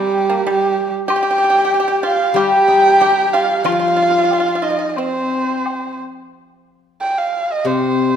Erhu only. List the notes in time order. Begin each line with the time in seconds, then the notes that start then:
Already playing: G4
0.50 G4
1.11 G5
2.07 F5
2.38 G5
3.33 F5
3.66 F5
4.64 D#5
4.89 D#5
4.97 C5
7.01 G5
7.18 F5
7.52 D#5
7.67 C5